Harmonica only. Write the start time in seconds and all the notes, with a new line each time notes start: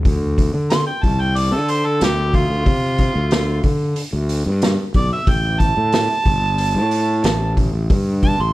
0.70 C6
0.87 G5
1.03 A5
1.21 G5
1.37 D5
1.53 A4
1.70 C5
1.86 A4
2.04 G4
2.35 F4
4.96 D5
5.13 E5
5.30 G5
5.60 A5
8.23 A5
8.41 C6